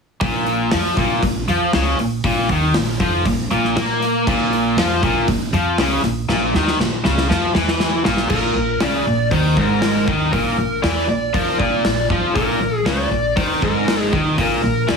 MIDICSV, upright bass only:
0, 0, Header, 1, 2, 480
1, 0, Start_track
1, 0, Tempo, 505902
1, 206, Time_signature, 4, 2, 24, 8
1, 14202, End_track
2, 0, Start_track
2, 0, Title_t, "Upright bass"
2, 0, Program_c, 0, 32
2, 202, Note_on_c, 0, 34, 96
2, 649, Note_off_c, 0, 34, 0
2, 691, Note_on_c, 0, 41, 95
2, 911, Note_off_c, 0, 41, 0
2, 923, Note_on_c, 0, 34, 95
2, 1146, Note_off_c, 0, 34, 0
2, 1168, Note_on_c, 0, 34, 82
2, 1389, Note_off_c, 0, 34, 0
2, 1399, Note_on_c, 0, 41, 91
2, 1624, Note_off_c, 0, 41, 0
2, 1641, Note_on_c, 0, 37, 101
2, 1865, Note_off_c, 0, 37, 0
2, 1884, Note_on_c, 0, 34, 66
2, 2106, Note_off_c, 0, 34, 0
2, 2123, Note_on_c, 0, 34, 86
2, 2346, Note_off_c, 0, 34, 0
2, 2362, Note_on_c, 0, 39, 91
2, 2585, Note_off_c, 0, 39, 0
2, 2600, Note_on_c, 0, 34, 72
2, 2824, Note_off_c, 0, 34, 0
2, 2846, Note_on_c, 0, 41, 96
2, 3067, Note_off_c, 0, 41, 0
2, 3090, Note_on_c, 0, 34, 87
2, 3309, Note_off_c, 0, 34, 0
2, 3329, Note_on_c, 0, 34, 87
2, 3548, Note_off_c, 0, 34, 0
2, 3567, Note_on_c, 0, 46, 88
2, 4010, Note_off_c, 0, 46, 0
2, 4052, Note_on_c, 0, 34, 97
2, 4492, Note_off_c, 0, 34, 0
2, 4522, Note_on_c, 0, 41, 92
2, 4744, Note_off_c, 0, 41, 0
2, 4770, Note_on_c, 0, 34, 91
2, 4988, Note_off_c, 0, 34, 0
2, 5011, Note_on_c, 0, 34, 78
2, 5229, Note_off_c, 0, 34, 0
2, 5244, Note_on_c, 0, 41, 98
2, 5465, Note_off_c, 0, 41, 0
2, 5489, Note_on_c, 0, 37, 96
2, 5708, Note_off_c, 0, 37, 0
2, 5723, Note_on_c, 0, 34, 78
2, 5944, Note_off_c, 0, 34, 0
2, 5964, Note_on_c, 0, 34, 94
2, 6185, Note_off_c, 0, 34, 0
2, 6209, Note_on_c, 0, 39, 98
2, 6427, Note_off_c, 0, 39, 0
2, 6444, Note_on_c, 0, 34, 76
2, 6665, Note_off_c, 0, 34, 0
2, 6687, Note_on_c, 0, 37, 92
2, 6906, Note_off_c, 0, 37, 0
2, 6922, Note_on_c, 0, 41, 97
2, 7143, Note_off_c, 0, 41, 0
2, 7162, Note_on_c, 0, 40, 89
2, 7607, Note_off_c, 0, 40, 0
2, 7636, Note_on_c, 0, 34, 85
2, 7860, Note_off_c, 0, 34, 0
2, 7878, Note_on_c, 0, 34, 89
2, 8102, Note_off_c, 0, 34, 0
2, 8113, Note_on_c, 0, 34, 75
2, 8339, Note_off_c, 0, 34, 0
2, 8357, Note_on_c, 0, 37, 86
2, 8581, Note_off_c, 0, 37, 0
2, 8602, Note_on_c, 0, 34, 74
2, 8824, Note_off_c, 0, 34, 0
2, 8833, Note_on_c, 0, 39, 94
2, 9059, Note_off_c, 0, 39, 0
2, 9085, Note_on_c, 0, 32, 88
2, 9529, Note_off_c, 0, 32, 0
2, 9564, Note_on_c, 0, 39, 74
2, 9785, Note_off_c, 0, 39, 0
2, 9801, Note_on_c, 0, 34, 94
2, 10024, Note_off_c, 0, 34, 0
2, 10038, Note_on_c, 0, 34, 85
2, 10262, Note_off_c, 0, 34, 0
2, 10280, Note_on_c, 0, 40, 88
2, 10504, Note_off_c, 0, 40, 0
2, 10509, Note_on_c, 0, 34, 74
2, 10738, Note_off_c, 0, 34, 0
2, 10761, Note_on_c, 0, 41, 90
2, 10985, Note_off_c, 0, 41, 0
2, 11001, Note_on_c, 0, 34, 80
2, 11225, Note_off_c, 0, 34, 0
2, 11244, Note_on_c, 0, 34, 77
2, 11467, Note_off_c, 0, 34, 0
2, 11485, Note_on_c, 0, 41, 86
2, 11707, Note_off_c, 0, 41, 0
2, 11721, Note_on_c, 0, 34, 80
2, 11945, Note_off_c, 0, 34, 0
2, 11956, Note_on_c, 0, 34, 77
2, 12183, Note_off_c, 0, 34, 0
2, 12197, Note_on_c, 0, 37, 98
2, 12423, Note_off_c, 0, 37, 0
2, 12438, Note_on_c, 0, 34, 80
2, 12664, Note_off_c, 0, 34, 0
2, 12680, Note_on_c, 0, 39, 89
2, 12905, Note_off_c, 0, 39, 0
2, 12928, Note_on_c, 0, 32, 81
2, 13373, Note_off_c, 0, 32, 0
2, 13409, Note_on_c, 0, 39, 82
2, 13630, Note_off_c, 0, 39, 0
2, 13644, Note_on_c, 0, 34, 85
2, 13868, Note_off_c, 0, 34, 0
2, 13886, Note_on_c, 0, 34, 82
2, 14109, Note_off_c, 0, 34, 0
2, 14126, Note_on_c, 0, 40, 88
2, 14202, Note_off_c, 0, 40, 0
2, 14202, End_track
0, 0, End_of_file